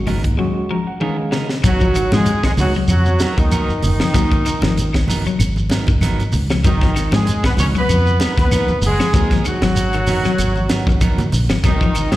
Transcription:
Already playing: G#1 G#3 C#4 F#4
0.06 F#3 G#3 B3 D#4 A#4, open hi-hat, high conga, low conga, shekere
0.23 D#2, muted clean electric guitar stroke, kick, closed hi-hat
0.37 F#3 G#3 C#4 F#4
0.70 F3 A#5, muted clean electric guitar stroke
0.87 F#5, muted clean electric guitar stroke
1.00 D#3 G#3 B3 C#4 D#4 G#4 A#4 F5, high tom
1.18 muted clean electric guitar stroke
1.31 C#3 F#3 B3 D#4 A#4 D#5, snare
1.49 muted clean electric guitar stroke, snare
1.63 G#1 F#3 B3 D#4 F#4 A#4, kick, closed hi-hat, shekere
1.67 F#3
1.80 F3 B3 D#4 A#4, kick, high conga, shekere
1.95 D#3, muted clean electric guitar stroke, closed hi-hat, claves, shekere
2.12 G#2 F3 G#3 G#4, snare, high conga, shekere
2.26 muted clean electric guitar stroke, closed hi-hat, shekere
2.44 D#3 G#3 G#4, muted fingered electric bass stroke, kick, snare, closed hi-hat, claves, shekere
2.57 C#2 F#3 B3 D#4 F#4, snare, open hi-hat, high conga, low conga, shekere
2.74 F#3, muted clean electric guitar stroke, muted fingered electric bass stroke, shekere
2.88 F2 F#3 F#4, closed hi-hat, claves, shekere
3.05 muted clean electric guitar stroke, high conga, shekere
3.19 F#3 B3 D#4 A#4, snare, closed hi-hat, high conga, shekere
3.38 D#2 D#3 D#4, muted clean electric guitar stroke, kick, closed hi-hat, shekere
3.51 F#3 B3 D#4 A#4, closed hi-hat, high conga, claves, shekere
3.68 muted fingered electric bass stroke, high conga, shekere
3.82 F#1 D#3 D#4, muted clean electric guitar stroke, open hi-hat, low conga, shekere
4.00 F3, muted clean electric guitar stroke, snare, claves, shekere
4.14 D#2 F#3 B3 D#4 A#4, kick, closed hi-hat, shekere
4.32 D#4 A#4, muted clean electric guitar stroke, kick, closed hi-hat, shekere
4.46 D#3, muted clean electric guitar stroke, closed hi-hat, claves, shekere
4.62 G#1 F3, snare, high conga, shekere
4.77 muted clean electric guitar stroke, closed hi-hat, shekere
4.93 D#3, muted clean electric guitar stroke, kick, snare, closed hi-hat, claves, shekere
5.08 F#1 F#3 B3 D#4 A#4, open hi-hat, high conga, low conga, shekere
5.26 F#3, muted clean electric guitar stroke, muted fingered electric bass stroke, closed hi-hat, shekere
5.39 G#1, closed hi-hat, claves, shekere
5.56 muted clean electric guitar stroke, high conga, shekere
5.70 F#3 B3 D#4 A#4, snare, closed hi-hat, high conga, shekere
5.87 G#1 D#3, kick, low conga, shekere
6.01 F#3 B3 D#4 A#4, snare, closed hi-hat, high conga, claves, shekere
6.20 closed hi-hat, shekere
6.32 C#2, muted clean electric guitar stroke, open hi-hat, low conga, shekere
6.50 F3, muted clean electric guitar stroke, snare, claves, shekere
6.64 G#1 D#3 F#3 B3 D#4 A#4, kick, closed hi-hat, shekere
6.81 F3 B3 D#4 A#4, kick, snare, shekere
6.96 D#3, muted clean electric guitar stroke, snare, closed hi-hat, claves, shekere
7.12 G#2 F3 G#3 G#4, snare, high conga, shekere
7.26 muted clean electric guitar stroke, closed hi-hat, shekere
7.44 D#3 B3 B4, muted fingered electric bass stroke, muted clean electric guitar stroke, kick, snare, closed hi-hat, claves, shekere
7.57 C#2 F#3 B3 C#4 D#4 C#5, open hi-hat, high conga, low conga, shekere
7.62 C#4
7.75 F#3, muted clean electric guitar stroke, muted fingered electric bass stroke, shekere
7.79 B3 B4
7.89 F2, closed hi-hat, claves, shekere
8.06 muted clean electric guitar stroke, shekere
8.20 F#3 B3 D#4 A#4, snare, closed hi-hat, high conga, shekere
8.37 D#2 D#3 B3 B4, kick, snare, closed hi-hat, shekere
8.42 B3
8.51 B3 D#4 A#4, snare, closed hi-hat, high conga, claves, shekere
8.68 muted fingered electric bass stroke, high conga, shekere
8.82 F#1, muted clean electric guitar stroke, open hi-hat, low conga, shekere
8.86 G#3 G#4
8.99 F3, snare, claves, shekere
9.14 D#2 F#3 B3 D#4 A#4, kick, closed hi-hat, shekere
9.31 F3 B3 D#4 A#4, kick, snare, closed hi-hat, high conga, shekere
9.45 D#3 F#3 F#4, closed hi-hat, claves, shekere
9.49 F#3
9.62 G#1 F#3, snare, high conga, shekere
9.76 muted clean electric guitar stroke, closed hi-hat, shekere
9.93 D#3, muted clean electric guitar stroke, closed hi-hat, claves, shekere
10.07 F#1 F#3 B3 D#4 A#4, open hi-hat, high conga, low conga, shekere
10.25 F#3, muted clean electric guitar stroke, muted fingered electric bass stroke, snare, closed hi-hat, shekere
10.38 G#1, closed hi-hat, claves, shekere
10.56 muted clean electric guitar stroke, high conga, shekere
10.69 F#3 B3 D#4 A#4, snare, closed hi-hat, high conga, shekere
10.87 G#1 D#3, muted clean electric guitar stroke, kick, high conga, shekere
11.01 F#3 B3 D#4 A#4, kick, closed hi-hat, high conga, claves, shekere
11.18 closed hi-hat, low conga, shekere
11.32 A#1, muted clean electric guitar stroke, open hi-hat, low conga, shekere
11.49 G#1 F3, muted clean electric guitar stroke, snare, low conga, claves, shekere
11.63 G#1 D#3 F#3 B3 D#4 A#4, kick, snare, closed hi-hat, shekere
11.68 D#3
11.80 F3 B3 D#4 A#4, kick, high conga, shekere
11.94 D#3, muted clean electric guitar stroke, closed hi-hat, claves, shekere
12.12 G#2 F3 G#3 G#4, snare, high conga, shekere

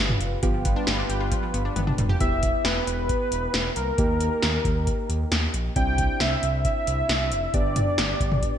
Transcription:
Already playing: G3 B3 F4 G4 B4
0.00 G1
0.09 mid tom
0.21 F1, closed hi-hat
0.43 G1 F3 G3 B3 F4 G4 B4, kick, closed hi-hat
0.54 F3
0.65 B3, kick, closed hi-hat
0.76 D4
0.87 G1 B3, snare, closed hi-hat
0.98 D4
1.09 G1 G4, closed hi-hat
1.21 F4
1.31 F3, kick, closed hi-hat
1.43 F3
1.54 G1 B3, closed hi-hat
1.65 D4
1.76 G1 B3, closed hi-hat, high tom
1.87 D4, mid tom
1.98 F1 G3, closed hi-hat, mid tom
2.09 G4, floor tom
2.20 E1 B3 E4 G4 E5, kick, closed hi-hat
2.43 kick, closed hi-hat
2.65 E1 B4, snare, closed hi-hat
2.87 E1 B4, closed hi-hat
3.09 kick, closed hi-hat
3.32 E1, closed hi-hat
3.54 E1, snare, closed hi-hat
3.76 C2 A#4, closed hi-hat
3.98 D#2 A#3 D#4 G4, kick, closed hi-hat
4.21 closed hi-hat
4.42 D#2, snare, closed hi-hat
4.65 D#2, kick, closed hi-hat
4.87 kick, closed hi-hat
5.09 D#2, closed hi-hat
5.32 D#2, snare, closed hi-hat
5.54 A#1, closed hi-hat
5.76 C2 C4 D4 E4 G5, kick, closed hi-hat
5.98 kick, closed hi-hat
6.20 C2 E5, snare, closed hi-hat
6.43 C2, closed hi-hat
6.65 E5, kick, closed hi-hat
6.87 C2, closed hi-hat
7.09 C2, snare, closed hi-hat
7.32 F1, closed hi-hat
7.54 G1 B3 D4 G4 D5, kick, closed hi-hat
7.76 closed hi-hat, mid tom
7.98 G1, snare, closed hi-hat
8.20 G1, kick, closed hi-hat
8.32 mid tom
8.42 kick, closed hi-hat

